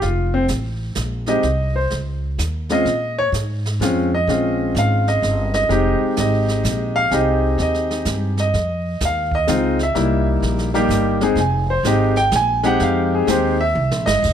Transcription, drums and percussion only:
0.02 brush sweep, snare
0.48 snare, hi-hat pedal
0.95 snare, hi-hat pedal
1.26 snare
1.43 brush sweep, snare
1.90 snare
2.39 snare, hi-hat pedal
2.69 snare
2.86 brush sweep, snare
3.34 snare, hi-hat pedal
3.65 snare
3.81 snare, hi-hat pedal
4.29 brush sweep, snare
4.76 snare, hi-hat pedal
5.07 snare
5.23 snare
5.54 snare
5.70 brush sweep, snare
6.17 snare, hi-hat pedal
6.48 snare
6.64 snare, hi-hat pedal
7.11 brush sweep, snare
7.58 snare
7.74 snare
7.91 snare
8.05 snare, hi-hat pedal
8.37 snare
8.54 brush sweep, snare
9.00 snare, hi-hat pedal
9.31 kick
9.47 snare, hi-hat pedal
9.79 snare
9.95 brush sweep, snare
10.43 snare
10.58 snare
10.74 snare
10.90 snare, hi-hat pedal
11.21 snare
11.36 brush sweep, snare
11.84 snare, hi-hat pedal
12.16 snare
12.31 snare, hi-hat pedal
12.63 snare
12.80 brush sweep, snare
13.27 snare, hi-hat pedal
13.91 snare
14.07 snare
14.23 brush sweep, kick, snare, crash

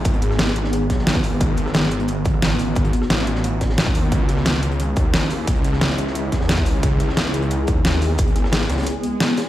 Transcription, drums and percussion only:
0.05 kick, closed hi-hat
0.13 closed hi-hat
0.22 closed hi-hat
0.31 cross-stick, snare
0.39 snare, closed hi-hat, open hi-hat
0.47 snare
0.56 closed hi-hat
0.64 snare
0.73 closed hi-hat
0.90 kick, snare, closed hi-hat
0.99 snare
1.07 snare, closed hi-hat
1.15 kick
1.24 closed hi-hat, open hi-hat
1.40 kick, closed hi-hat
1.57 cross-stick, closed hi-hat
1.66 cross-stick, snare
1.74 snare, closed hi-hat
1.91 cross-stick, closed hi-hat
2.00 closed hi-hat
2.08 closed hi-hat
2.25 kick, closed hi-hat
2.34 cross-stick
2.42 snare, closed hi-hat
2.59 closed hi-hat, open hi-hat
2.75 kick, closed hi-hat
2.85 closed hi-hat
2.93 closed hi-hat
3.02 cross-stick, snare
3.10 snare, closed hi-hat, open hi-hat
3.19 snare
3.27 closed hi-hat
3.35 snare
3.44 closed hi-hat
3.61 kick, snare, closed hi-hat
3.70 snare
3.78 snare, closed hi-hat
3.87 kick
3.95 closed hi-hat, open hi-hat
4.12 kick, closed hi-hat
4.29 cross-stick, closed hi-hat
4.37 cross-stick, snare
4.45 snare, closed hi-hat
4.63 cross-stick, closed hi-hat
4.71 closed hi-hat
4.80 closed hi-hat
4.96 kick, closed hi-hat
5.05 cross-stick
5.13 snare, closed hi-hat
5.30 closed hi-hat, open hi-hat
5.47 kick, closed hi-hat
5.56 closed hi-hat
5.64 closed hi-hat
5.73 cross-stick, snare
5.81 snare, closed hi-hat, open hi-hat
5.90 snare
5.98 closed hi-hat
6.07 snare
6.15 closed hi-hat
6.32 kick, snare, closed hi-hat
6.41 snare
6.49 snare, closed hi-hat
6.58 kick
6.66 closed hi-hat, open hi-hat
6.83 kick, closed hi-hat
7.00 cross-stick, closed hi-hat
7.09 cross-stick, snare
7.17 snare, closed hi-hat
7.34 closed hi-hat
7.42 closed hi-hat
7.51 closed hi-hat
7.67 kick, closed hi-hat
7.76 cross-stick
7.85 snare, closed hi-hat
8.02 closed hi-hat, open hi-hat
8.18 kick, closed hi-hat
8.28 closed hi-hat
8.36 cross-stick, closed hi-hat
8.44 cross-stick, snare
8.52 snare, closed hi-hat, open hi-hat
8.61 snare
8.69 snare, closed hi-hat
8.78 snare, closed hi-hat
8.82 snare, closed hi-hat
8.87 closed hi-hat
9.03 closed hi-hat
9.20 snare, closed hi-hat
9.37 snare, closed hi-hat, open hi-hat

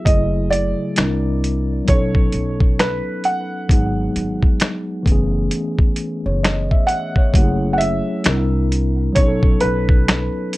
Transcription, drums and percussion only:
0.06 kick, closed hi-hat
0.53 closed hi-hat
0.96 finger snap, snare, closed hi-hat
1.44 closed hi-hat
1.88 kick, closed hi-hat
2.15 kick
2.32 closed hi-hat
2.60 kick
2.79 finger snap, snare, closed hi-hat
3.24 closed hi-hat
3.69 kick, closed hi-hat
4.16 closed hi-hat
4.43 kick
4.60 finger snap, snare, closed hi-hat
5.06 kick, closed hi-hat
5.51 closed hi-hat
5.79 kick
5.96 closed hi-hat
6.44 finger snap, snare, closed hi-hat
6.71 kick
6.88 closed hi-hat
7.16 kick
7.34 kick, closed hi-hat
7.81 closed hi-hat
8.24 finger snap, snare, closed hi-hat
8.72 closed hi-hat
9.16 kick, closed hi-hat
9.43 kick
9.61 closed hi-hat
9.89 kick
10.08 finger snap, snare, closed hi-hat
10.53 closed hi-hat

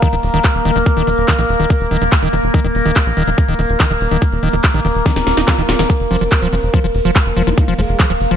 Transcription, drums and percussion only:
0.02 kick, closed hi-hat
0.13 closed hi-hat
0.23 open hi-hat
0.34 closed hi-hat
0.44 kick, clap, closed hi-hat
0.55 closed hi-hat
0.65 open hi-hat
0.76 closed hi-hat
0.86 kick, closed hi-hat
0.97 closed hi-hat
1.07 open hi-hat
1.18 closed hi-hat
1.28 kick, clap, closed hi-hat
1.39 closed hi-hat
1.49 open hi-hat
1.60 closed hi-hat
1.70 kick, closed hi-hat
1.81 closed hi-hat
1.91 open hi-hat
2.02 closed hi-hat
2.12 kick, clap, closed hi-hat
2.23 closed hi-hat
2.33 open hi-hat
2.44 closed hi-hat
2.54 kick, closed hi-hat
2.65 closed hi-hat
2.75 open hi-hat
2.86 closed hi-hat
2.96 kick, clap, closed hi-hat
3.07 closed hi-hat
3.17 open hi-hat
3.27 closed hi-hat
3.38 kick, closed hi-hat
3.48 closed hi-hat
3.59 open hi-hat
3.69 closed hi-hat
3.80 kick, clap, closed hi-hat
3.90 closed hi-hat
4.01 open hi-hat
4.11 closed hi-hat
4.22 kick, closed hi-hat
4.32 closed hi-hat
4.43 open hi-hat
4.53 closed hi-hat
4.64 kick, clap, closed hi-hat
4.74 closed hi-hat
4.85 open hi-hat
4.95 closed hi-hat
5.06 kick, snare, closed hi-hat
5.16 snare, closed hi-hat
5.27 snare, open hi-hat
5.37 snare, closed hi-hat
5.48 kick, snare, clap, closed hi-hat
5.58 closed hi-hat
5.69 snare, open hi-hat
5.79 snare, closed hi-hat
5.90 kick, closed hi-hat
6.00 closed hi-hat
6.11 open hi-hat
6.21 closed hi-hat
6.32 kick, clap, closed hi-hat
6.42 closed hi-hat
6.53 open hi-hat
6.63 closed hi-hat
6.74 kick, closed hi-hat
6.84 closed hi-hat
6.95 open hi-hat
7.05 closed hi-hat
7.16 kick, clap, closed hi-hat
7.26 closed hi-hat
7.37 open hi-hat
7.47 closed hi-hat
7.58 kick, closed hi-hat
7.68 closed hi-hat
7.79 open hi-hat
7.89 closed hi-hat
8.00 kick, clap, closed hi-hat
8.10 closed hi-hat
8.21 open hi-hat
8.31 closed hi-hat

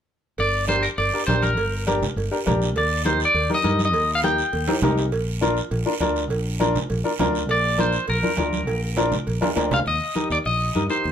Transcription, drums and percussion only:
0.38 cowbell, high conga, long guiro
0.68 cowbell, high conga, short guiro
0.83 short guiro
0.98 cowbell, high conga, long guiro
1.28 cowbell, high conga, low timbale, short guiro
1.42 high conga, short guiro
1.57 cowbell, high conga, long guiro
1.87 cowbell, high conga, short guiro
2.02 low conga, short guiro
2.17 cowbell, high conga, long guiro
2.47 cowbell, high conga, low conga, short guiro
2.62 short guiro
2.76 cowbell, long guiro
3.05 cowbell, high conga, short guiro
3.20 short guiro
3.35 cowbell, high conga, long guiro
3.50 high conga
3.64 cowbell, high conga, short guiro
3.79 high conga, short guiro
3.93 cowbell, high conga, long guiro
4.23 cowbell, high conga, short guiro
4.38 short guiro
4.53 cowbell, high conga, long guiro
4.68 high conga, high timbale
4.82 cowbell, high conga, low conga, low timbale, short guiro
4.98 low timbale, short guiro
5.12 cowbell, long guiro
5.42 cowbell, high conga, short guiro
5.57 short guiro
5.71 cowbell, high conga, long guiro
6.01 cowbell, high conga, low timbale, short guiro
6.16 short guiro
6.30 cowbell, high conga, long guiro
6.60 cowbell, high conga, short guiro
6.76 low conga, short guiro
6.90 cowbell, long guiro
7.19 cowbell, high conga, low conga, low timbale, short guiro
7.35 short guiro
7.49 cowbell, high conga, long guiro
7.78 cowbell, high conga, short guiro
7.93 short guiro
8.08 cowbell, long guiro
8.23 high conga
8.37 cowbell, high conga, low timbale, short guiro
8.53 high conga, short guiro
8.67 cowbell, high conga, long guiro
8.97 cowbell, high conga, high timbale, short guiro
9.12 low conga, short guiro
9.27 cowbell, high conga, long guiro
9.42 high conga, low timbale
9.57 cowbell, low timbale, short guiro
9.71 low conga, low timbale, short guiro
9.86 high conga, long guiro
10.16 high conga, short guiro
10.30 short guiro
10.45 high conga, long guiro
10.75 high conga, short guiro
10.90 short guiro
11.04 high conga, long guiro

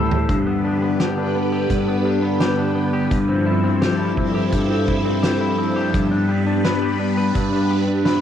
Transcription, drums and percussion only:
0.12 floor tom
0.29 kick, closed hi-hat
1.00 snare, closed hi-hat
1.70 kick, closed hi-hat
2.40 snare, closed hi-hat
3.11 kick, closed hi-hat
3.82 snare, closed hi-hat
4.17 kick
4.53 kick, closed hi-hat
4.88 kick
5.23 snare, closed hi-hat
5.94 kick, closed hi-hat
6.64 snare, closed hi-hat
7.35 kick, closed hi-hat
8.05 snare, closed hi-hat

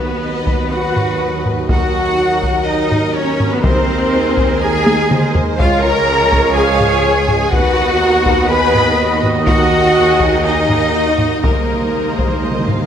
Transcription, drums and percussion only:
0.47 taiko
0.96 taiko low-mid
1.45 taiko low-mid
1.69 taiko
2.43 taiko
2.92 taiko low-mid
3.40 taiko low-mid
3.64 taiko
4.37 taiko
4.87 taiko high
5.11 taiko mid
5.35 taiko low
5.60 taiko
6.32 taiko
6.80 taiko low-mid
7.28 taiko low-mid
7.53 taiko
8.26 taiko
8.75 taiko low-mid
9.23 taiko low-mid
9.47 taiko
10.20 taiko
10.69 taiko low-mid
11.18 taiko low-mid
11.44 taiko
12.19 taiko
12.68 taiko low-mid

